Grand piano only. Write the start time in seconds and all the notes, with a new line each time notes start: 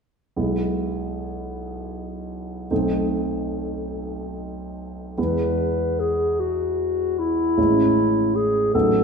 0.36 B1 G#3 B3 E4
2.71 B1 A3 C4 D#4
5.18 E2 G#3 B3 E4
7.58 A1 G#3 C#4 E4
8.75 A1 F#3 B3 D#4